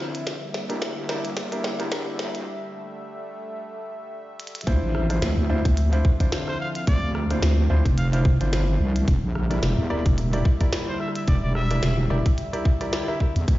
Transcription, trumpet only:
6.48 C5
6.60 F5
6.76 F5
6.88 D5
7.98 F5
8.13 F5
10.88 C5
11.00 E5
11.15 E5
11.28 D5
11.43 D5
11.55 E5

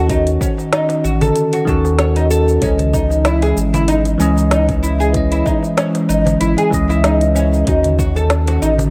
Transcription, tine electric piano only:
Already playing: D#3 C#4 F#4
0.07 D#3 C#4 F#4
1.65 D#3 C#4
1.69 F#4
2.60 E3 G#3 C#4 D#5
4.18 E3 G#3 C#4 D#5
5.13 E3 G#3 C#4 D#5
6.70 E3 G#3 C#4
6.74 D#5
7.65 D#3 C#4 F#4

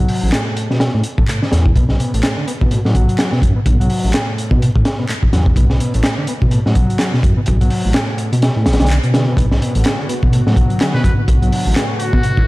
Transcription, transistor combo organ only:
0.00 F#3
0.33 A2
0.71 B2
1.18 A2
1.28 A2
1.42 D3
1.52 A2
1.76 B2
2.00 B2
2.14 A2
2.37 D3
2.47 B3
2.61 B2
2.71 A2
2.85 F#3
3.56 B2
3.80 F#3
4.14 A2
4.51 B2
4.99 B2
5.09 A2
5.33 F#3
5.57 B2
5.80 B2
5.94 A2
6.18 D3
6.28 B3
6.42 B2
6.52 A2
6.66 F#3
7.37 B2
7.61 F#3
7.95 A2
8.32 B2
8.80 D3
8.90 D3
9.14 D3
9.27 B2
9.38 B2
9.61 B2
9.75 A2
9.99 D3
10.09 B3
10.23 B2
10.33 A2
10.46 F#3
11.18 B2
11.42 F#3
11.76 A2
12.13 B2

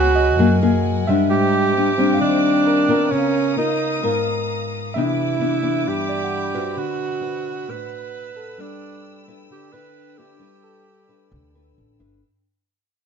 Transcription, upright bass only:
Already playing: C#2
0.38 F#2
1.30 G#2
2.21 D#2
3.11 C#2
10.40 G1
11.32 D2
11.78 A1
12.00 G1

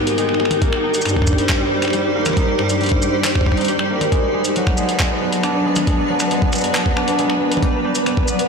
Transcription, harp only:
Already playing: G#2 G3 G#3 B3 D#4
0.18 G#3
0.40 G#3
0.62 A#3
0.84 D#4
1.06 G2
1.27 G3
1.49 G3
1.71 G3
1.93 G3
2.15 A#3
2.37 D#4
2.59 G2
2.81 G3
3.03 G3
3.24 G3
3.46 G3
3.57 D#4
3.68 G4
3.79 G3
3.90 A#3
4.01 G3
4.12 G#3
4.34 G#3
4.56 F#3
4.78 G#3
5.00 G#3
5.22 B3
5.43 D4
5.65 G#3
5.87 G#3
6.09 F#3
6.31 G#3
6.53 G#3
6.75 B3
6.97 D4
7.19 G#3
7.41 G#3
7.63 G3
7.84 G3
8.06 G3
8.28 B3

